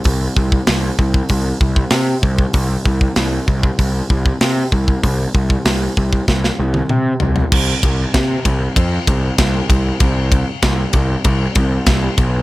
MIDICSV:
0, 0, Header, 1, 3, 480
1, 0, Start_track
1, 0, Tempo, 621118
1, 46, Time_signature, 4, 2, 24, 8
1, 9600, End_track
2, 0, Start_track
2, 0, Title_t, "Picked electric bass"
2, 0, Program_c, 0, 34
2, 38, Note_on_c, 0, 36, 100
2, 206, Note_off_c, 0, 36, 0
2, 282, Note_on_c, 0, 36, 90
2, 448, Note_off_c, 0, 36, 0
2, 527, Note_on_c, 0, 36, 92
2, 692, Note_off_c, 0, 36, 0
2, 764, Note_on_c, 0, 36, 90
2, 930, Note_off_c, 0, 36, 0
2, 1003, Note_on_c, 0, 36, 92
2, 1170, Note_off_c, 0, 36, 0
2, 1240, Note_on_c, 0, 36, 91
2, 1407, Note_off_c, 0, 36, 0
2, 1479, Note_on_c, 0, 48, 90
2, 1647, Note_off_c, 0, 48, 0
2, 1723, Note_on_c, 0, 36, 89
2, 1890, Note_off_c, 0, 36, 0
2, 1962, Note_on_c, 0, 36, 101
2, 2129, Note_off_c, 0, 36, 0
2, 2207, Note_on_c, 0, 36, 80
2, 2372, Note_off_c, 0, 36, 0
2, 2443, Note_on_c, 0, 36, 94
2, 2610, Note_off_c, 0, 36, 0
2, 2688, Note_on_c, 0, 36, 86
2, 2853, Note_off_c, 0, 36, 0
2, 2927, Note_on_c, 0, 36, 89
2, 3093, Note_off_c, 0, 36, 0
2, 3168, Note_on_c, 0, 36, 91
2, 3334, Note_off_c, 0, 36, 0
2, 3408, Note_on_c, 0, 48, 83
2, 3573, Note_off_c, 0, 48, 0
2, 3650, Note_on_c, 0, 36, 86
2, 3815, Note_off_c, 0, 36, 0
2, 3893, Note_on_c, 0, 36, 104
2, 4057, Note_off_c, 0, 36, 0
2, 4130, Note_on_c, 0, 36, 88
2, 4295, Note_off_c, 0, 36, 0
2, 4369, Note_on_c, 0, 36, 88
2, 4534, Note_off_c, 0, 36, 0
2, 4617, Note_on_c, 0, 36, 95
2, 4780, Note_off_c, 0, 36, 0
2, 4853, Note_on_c, 0, 36, 93
2, 5017, Note_off_c, 0, 36, 0
2, 5096, Note_on_c, 0, 36, 90
2, 5259, Note_off_c, 0, 36, 0
2, 5336, Note_on_c, 0, 48, 84
2, 5499, Note_off_c, 0, 48, 0
2, 5579, Note_on_c, 0, 36, 89
2, 5741, Note_off_c, 0, 36, 0
2, 5811, Note_on_c, 0, 36, 103
2, 5974, Note_off_c, 0, 36, 0
2, 6051, Note_on_c, 0, 36, 91
2, 6215, Note_off_c, 0, 36, 0
2, 6291, Note_on_c, 0, 48, 100
2, 6454, Note_off_c, 0, 48, 0
2, 6534, Note_on_c, 0, 36, 97
2, 6696, Note_off_c, 0, 36, 0
2, 6775, Note_on_c, 0, 41, 95
2, 6937, Note_off_c, 0, 41, 0
2, 7016, Note_on_c, 0, 36, 103
2, 7178, Note_off_c, 0, 36, 0
2, 7256, Note_on_c, 0, 36, 82
2, 7417, Note_off_c, 0, 36, 0
2, 7490, Note_on_c, 0, 36, 96
2, 7654, Note_off_c, 0, 36, 0
2, 7731, Note_on_c, 0, 36, 100
2, 8058, Note_off_c, 0, 36, 0
2, 8213, Note_on_c, 0, 36, 98
2, 8375, Note_off_c, 0, 36, 0
2, 8451, Note_on_c, 0, 36, 98
2, 8614, Note_off_c, 0, 36, 0
2, 8695, Note_on_c, 0, 36, 105
2, 8856, Note_off_c, 0, 36, 0
2, 8933, Note_on_c, 0, 36, 102
2, 9095, Note_off_c, 0, 36, 0
2, 9169, Note_on_c, 0, 36, 89
2, 9332, Note_off_c, 0, 36, 0
2, 9412, Note_on_c, 0, 35, 95
2, 9600, Note_off_c, 0, 35, 0
2, 9600, End_track
3, 0, Start_track
3, 0, Title_t, "Drums"
3, 32, Note_on_c, 9, 46, 58
3, 42, Note_on_c, 9, 36, 105
3, 109, Note_off_c, 9, 46, 0
3, 119, Note_off_c, 9, 36, 0
3, 282, Note_on_c, 9, 36, 93
3, 359, Note_off_c, 9, 36, 0
3, 403, Note_on_c, 9, 36, 82
3, 480, Note_off_c, 9, 36, 0
3, 517, Note_on_c, 9, 46, 61
3, 520, Note_on_c, 9, 38, 125
3, 595, Note_off_c, 9, 46, 0
3, 597, Note_off_c, 9, 38, 0
3, 763, Note_on_c, 9, 36, 86
3, 840, Note_off_c, 9, 36, 0
3, 883, Note_on_c, 9, 36, 91
3, 960, Note_off_c, 9, 36, 0
3, 995, Note_on_c, 9, 46, 58
3, 1002, Note_on_c, 9, 36, 91
3, 1072, Note_off_c, 9, 46, 0
3, 1080, Note_off_c, 9, 36, 0
3, 1243, Note_on_c, 9, 36, 88
3, 1320, Note_off_c, 9, 36, 0
3, 1362, Note_on_c, 9, 36, 85
3, 1439, Note_off_c, 9, 36, 0
3, 1472, Note_on_c, 9, 46, 60
3, 1474, Note_on_c, 9, 38, 111
3, 1549, Note_off_c, 9, 46, 0
3, 1551, Note_off_c, 9, 38, 0
3, 1723, Note_on_c, 9, 36, 78
3, 1801, Note_off_c, 9, 36, 0
3, 1843, Note_on_c, 9, 36, 82
3, 1920, Note_off_c, 9, 36, 0
3, 1959, Note_on_c, 9, 46, 60
3, 1963, Note_on_c, 9, 36, 96
3, 2036, Note_off_c, 9, 46, 0
3, 2041, Note_off_c, 9, 36, 0
3, 2206, Note_on_c, 9, 36, 83
3, 2284, Note_off_c, 9, 36, 0
3, 2326, Note_on_c, 9, 36, 77
3, 2403, Note_off_c, 9, 36, 0
3, 2442, Note_on_c, 9, 46, 57
3, 2444, Note_on_c, 9, 38, 114
3, 2519, Note_off_c, 9, 46, 0
3, 2521, Note_off_c, 9, 38, 0
3, 2688, Note_on_c, 9, 36, 83
3, 2765, Note_off_c, 9, 36, 0
3, 2808, Note_on_c, 9, 36, 92
3, 2886, Note_off_c, 9, 36, 0
3, 2928, Note_on_c, 9, 36, 90
3, 2928, Note_on_c, 9, 46, 60
3, 3005, Note_off_c, 9, 36, 0
3, 3005, Note_off_c, 9, 46, 0
3, 3169, Note_on_c, 9, 36, 93
3, 3246, Note_off_c, 9, 36, 0
3, 3289, Note_on_c, 9, 36, 84
3, 3366, Note_off_c, 9, 36, 0
3, 3407, Note_on_c, 9, 46, 60
3, 3409, Note_on_c, 9, 38, 114
3, 3484, Note_off_c, 9, 46, 0
3, 3486, Note_off_c, 9, 38, 0
3, 3649, Note_on_c, 9, 36, 78
3, 3726, Note_off_c, 9, 36, 0
3, 3771, Note_on_c, 9, 36, 73
3, 3848, Note_off_c, 9, 36, 0
3, 3891, Note_on_c, 9, 36, 90
3, 3891, Note_on_c, 9, 46, 58
3, 3968, Note_off_c, 9, 36, 0
3, 3968, Note_off_c, 9, 46, 0
3, 4132, Note_on_c, 9, 36, 93
3, 4209, Note_off_c, 9, 36, 0
3, 4250, Note_on_c, 9, 36, 79
3, 4328, Note_off_c, 9, 36, 0
3, 4370, Note_on_c, 9, 46, 63
3, 4372, Note_on_c, 9, 38, 118
3, 4447, Note_off_c, 9, 46, 0
3, 4449, Note_off_c, 9, 38, 0
3, 4615, Note_on_c, 9, 36, 79
3, 4692, Note_off_c, 9, 36, 0
3, 4734, Note_on_c, 9, 36, 86
3, 4811, Note_off_c, 9, 36, 0
3, 4853, Note_on_c, 9, 36, 100
3, 4857, Note_on_c, 9, 38, 64
3, 4931, Note_off_c, 9, 36, 0
3, 4934, Note_off_c, 9, 38, 0
3, 4979, Note_on_c, 9, 38, 57
3, 5056, Note_off_c, 9, 38, 0
3, 5208, Note_on_c, 9, 48, 72
3, 5285, Note_off_c, 9, 48, 0
3, 5328, Note_on_c, 9, 47, 81
3, 5405, Note_off_c, 9, 47, 0
3, 5564, Note_on_c, 9, 43, 89
3, 5642, Note_off_c, 9, 43, 0
3, 5685, Note_on_c, 9, 43, 82
3, 5763, Note_off_c, 9, 43, 0
3, 5812, Note_on_c, 9, 36, 125
3, 5813, Note_on_c, 9, 49, 125
3, 5889, Note_off_c, 9, 36, 0
3, 5891, Note_off_c, 9, 49, 0
3, 6052, Note_on_c, 9, 36, 99
3, 6053, Note_on_c, 9, 51, 94
3, 6129, Note_off_c, 9, 36, 0
3, 6130, Note_off_c, 9, 51, 0
3, 6292, Note_on_c, 9, 36, 125
3, 6292, Note_on_c, 9, 51, 116
3, 6294, Note_on_c, 9, 38, 118
3, 6369, Note_off_c, 9, 51, 0
3, 6370, Note_off_c, 9, 36, 0
3, 6372, Note_off_c, 9, 38, 0
3, 6531, Note_on_c, 9, 36, 88
3, 6532, Note_on_c, 9, 51, 88
3, 6609, Note_off_c, 9, 36, 0
3, 6609, Note_off_c, 9, 51, 0
3, 6772, Note_on_c, 9, 36, 114
3, 6774, Note_on_c, 9, 51, 119
3, 6849, Note_off_c, 9, 36, 0
3, 6851, Note_off_c, 9, 51, 0
3, 7013, Note_on_c, 9, 36, 97
3, 7013, Note_on_c, 9, 51, 91
3, 7090, Note_off_c, 9, 36, 0
3, 7090, Note_off_c, 9, 51, 0
3, 7251, Note_on_c, 9, 51, 123
3, 7252, Note_on_c, 9, 36, 116
3, 7254, Note_on_c, 9, 38, 127
3, 7329, Note_off_c, 9, 36, 0
3, 7329, Note_off_c, 9, 51, 0
3, 7331, Note_off_c, 9, 38, 0
3, 7493, Note_on_c, 9, 36, 90
3, 7496, Note_on_c, 9, 51, 84
3, 7571, Note_off_c, 9, 36, 0
3, 7573, Note_off_c, 9, 51, 0
3, 7729, Note_on_c, 9, 51, 114
3, 7731, Note_on_c, 9, 36, 116
3, 7806, Note_off_c, 9, 51, 0
3, 7809, Note_off_c, 9, 36, 0
3, 7972, Note_on_c, 9, 36, 88
3, 7975, Note_on_c, 9, 51, 85
3, 8050, Note_off_c, 9, 36, 0
3, 8052, Note_off_c, 9, 51, 0
3, 8211, Note_on_c, 9, 51, 116
3, 8212, Note_on_c, 9, 36, 116
3, 8213, Note_on_c, 9, 38, 127
3, 8288, Note_off_c, 9, 51, 0
3, 8289, Note_off_c, 9, 36, 0
3, 8290, Note_off_c, 9, 38, 0
3, 8446, Note_on_c, 9, 51, 82
3, 8451, Note_on_c, 9, 36, 84
3, 8524, Note_off_c, 9, 51, 0
3, 8528, Note_off_c, 9, 36, 0
3, 8690, Note_on_c, 9, 51, 103
3, 8693, Note_on_c, 9, 36, 112
3, 8767, Note_off_c, 9, 51, 0
3, 8770, Note_off_c, 9, 36, 0
3, 8928, Note_on_c, 9, 51, 82
3, 8931, Note_on_c, 9, 36, 99
3, 9005, Note_off_c, 9, 51, 0
3, 9009, Note_off_c, 9, 36, 0
3, 9169, Note_on_c, 9, 51, 100
3, 9171, Note_on_c, 9, 38, 125
3, 9172, Note_on_c, 9, 36, 120
3, 9246, Note_off_c, 9, 51, 0
3, 9248, Note_off_c, 9, 38, 0
3, 9249, Note_off_c, 9, 36, 0
3, 9411, Note_on_c, 9, 36, 91
3, 9411, Note_on_c, 9, 51, 75
3, 9488, Note_off_c, 9, 51, 0
3, 9489, Note_off_c, 9, 36, 0
3, 9600, End_track
0, 0, End_of_file